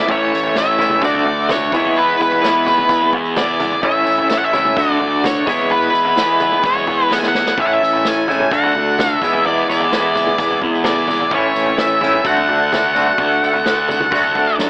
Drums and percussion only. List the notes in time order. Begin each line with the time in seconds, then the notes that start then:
0.08 kick, floor tom, tambourine
0.35 tambourine
0.43 floor tom
0.55 snare, tambourine
0.78 floor tom, mid tom, tambourine
0.89 mid tom
0.94 tambourine
1.01 kick, floor tom, tambourine
1.13 floor tom
1.25 floor tom
1.40 tambourine
1.49 snare, floor tom, mid tom, tambourine
1.63 tambourine
1.72 kick, floor tom, tambourine
1.85 floor tom, tambourine
1.96 floor tom, tambourine
2.21 tambourine
2.31 floor tom, tambourine
2.44 snare, tambourine
2.66 floor tom, mid tom, tambourine
2.78 mid tom
2.89 kick, floor tom, tambourine
3.01 floor tom
3.13 kick, floor tom
3.25 tambourine
3.36 snare, floor tom, mid tom, tambourine
3.60 floor tom, mid tom, tambourine
3.71 floor tom, tambourine
3.83 kick, floor tom, tambourine
4.06 tambourine
4.18 floor tom, tambourine
4.29 snare, tambourine
4.53 floor tom, mid tom, tambourine
4.65 mid tom
4.77 kick, floor tom, tambourine
4.89 floor tom, tambourine
5.00 floor tom
5.14 tambourine
5.24 snare, floor tom, mid tom, tambourine
5.47 kick, floor tom, tambourine
5.59 floor tom, tambourine
5.70 floor tom, tambourine
5.82 tambourine
5.95 tambourine
6.05 floor tom, tambourine
6.17 snare, tambourine
6.40 floor tom, mid tom, tambourine
6.51 mid tom, tambourine
6.63 kick, floor tom, tambourine
6.75 floor tom, tambourine
6.87 kick, floor tom, tambourine
7.02 tambourine
7.11 snare, tambourine
7.23 snare, tambourine
7.35 snare, tambourine
7.47 snare
7.57 kick, floor tom
7.62 tambourine
7.84 tambourine
7.93 floor tom, tambourine
8.05 snare, tambourine
8.28 floor tom, mid tom, tambourine
8.40 mid tom, tambourine
8.51 kick, floor tom, tambourine
8.63 floor tom, tambourine
8.75 floor tom
8.89 tambourine
8.98 snare, floor tom, mid tom, tambourine
9.22 kick, floor tom, tambourine
9.33 floor tom, tambourine
9.45 floor tom, tambourine
9.71 tambourine
9.80 floor tom
9.92 snare, tambourine
10.15 floor tom, mid tom, tambourine
10.27 mid tom
10.38 kick, floor tom, tambourine
10.50 floor tom
10.61 kick, floor tom
10.75 tambourine
10.84 snare, floor tom, mid tom, tambourine
10.98 tambourine
11.07 floor tom, mid tom, tambourine
11.20 floor tom
11.31 kick, floor tom, tambourine
11.56 tambourine
11.66 floor tom, tambourine
11.78 snare, tambourine
12.01 floor tom, mid tom, tambourine
12.13 mid tom
12.25 kick, floor tom, tambourine
12.37 floor tom
12.49 floor tom
12.72 snare, floor tom, mid tom, tambourine
12.86 tambourine
12.96 floor tom, tambourine
13.07 floor tom, tambourine
13.18 kick, floor tom, tambourine
13.32 tambourine
13.44 tambourine
13.53 floor tom, tambourine
13.66 snare, tambourine
13.79 tambourine
13.88 floor tom, mid tom, tambourine
14.00 mid tom
14.11 kick, floor tom, tambourine
14.24 floor tom, tambourine
14.35 kick, floor tom, tambourine
14.49 tambourine
14.59 snare, tambourine